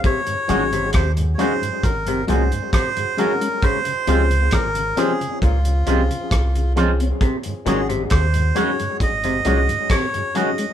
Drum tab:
HH |xxxxxxxxxxxxxxxx|xxxxxxxxxxxxxxxx|xxxxxxxxxxxxxxxx|
SD |----r-------r---|----r-------r-r-|----r-------r---|
BD |o---o---o---o---|o---o---o---o---|o---o---o---o---|